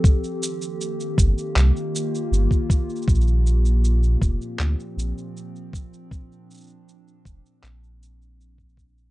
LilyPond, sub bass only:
\new Staff \with { instrumentName = "Sub bass" } { \clef bass \time 4/4 \key bes \major \tempo 4 = 79 r4. g,,8 c,8 r8 g,,8 r8 | bes,,4. f,,8 d,8 bes,,8 r4 | r4. f,,8 bes,,2 | }